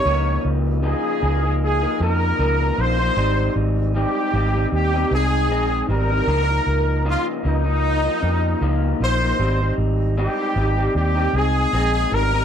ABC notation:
X:1
M:4/4
L:1/16
Q:"Swing 16ths" 1/4=77
K:Ab
V:1 name="Trumpet"
d2 z2 A4 A2 B4 c2- | c2 z2 G4 G2 A4 B2- | B4 F2 E6 z2 c2- | c2 z2 G4 G2 A4 B2 |]
V:2 name="Clean electric guitar"
[D,F,B,E]4 [D,F,B,E]2 [D,F,B,E] [F,B,E]2 [F,B,E] [D,F,B,E]2 [D,F,B,E]2 [D,F,B,E] [F,B,E] | [A,,G,CE]4 [A,,G,CE]2 [A,,G,CE] [G,CE]2 [G,CE] [A,,CE]2 [A,,CE]2 [A,,G,CE] [G,CE] | [D,F,B,E] [F,B,E]3 [D,F,B,E]2 [D,F,B,E] [F,B,E]2 [F,B,E] [D,F,B,E]2 [D,F,B,E]2 [D,F,B,E] [F,B,E] | [A,,G,CE] [G,CE]3 [A,,G,CE]2 [A,,G,CE] [G,CE]2 [G,CE] [A,,CE]2 [A,,CE]2 [A,,G,CE] [G,CE] |]
V:3 name="Fingered electric bass" clef=bass
D,,2 D,,3 z D,,4 F,,2 D,,2 B,,,2 | A,,,2 A,,,3 z A,,,2 E,,2 C,,2 B,,,2 A,,,2 | D,,2 D,,3 z D,,4 F,,2 D,,2 B,,,2 | A,,,2 A,,,3 z A,,,2 E,,2 C,,2 B,,,2 A,,,2 |]